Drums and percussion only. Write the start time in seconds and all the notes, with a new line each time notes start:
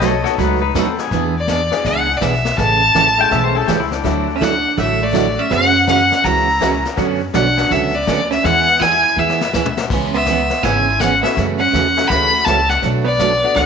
0.01 kick, snare, hi-hat pedal
0.25 snare
0.38 brush sweep, kick, snare
0.75 kick, snare, hi-hat pedal
0.98 snare
1.11 brush sweep, kick, snare
1.48 kick, snare, hi-hat pedal
1.72 snare
1.85 brush sweep, kick, snare
2.21 kick, snare, hi-hat pedal
2.45 snare
2.58 brush sweep, kick, snare
2.95 kick, snare, hi-hat pedal
3.31 brush sweep, kick, snare
3.68 kick, snare, hi-hat pedal
3.92 snare
4.04 brush sweep, kick, snare
4.41 kick, snare, hi-hat pedal
4.78 brush sweep, kick, snare
5.14 kick, snare, hi-hat pedal
5.51 brush sweep, kick, snare
5.88 kick, snare, hi-hat pedal
6.12 snare
6.24 brush sweep, kick, snare
6.61 kick, snare, hi-hat pedal
6.85 snare
6.97 brush sweep, kick, snare
7.34 kick, snare, hi-hat pedal
7.58 snare
7.71 brush sweep, kick, snare
8.07 kick, snare, hi-hat pedal
8.32 snare
8.44 brush sweep, kick, snare
8.81 kick, snare, hi-hat pedal
9.29 snare
9.41 snare
9.54 snare, hi-hat pedal
9.66 mid tom
9.77 snare
9.90 brush sweep, kick, snare, crash
10.26 kick, snare, hi-hat pedal
10.50 snare
10.63 brush sweep, kick, snare
11.00 kick, snare, hi-hat pedal
11.24 snare
11.37 brush sweep, kick, snare
11.74 kick, snare, hi-hat pedal
11.97 snare
12.10 brush sweep, kick, snare
12.46 kick, snare, hi-hat pedal
12.69 snare
12.82 brush sweep, kick, snare
13.19 kick, snare, hi-hat pedal
13.56 brush sweep, kick, snare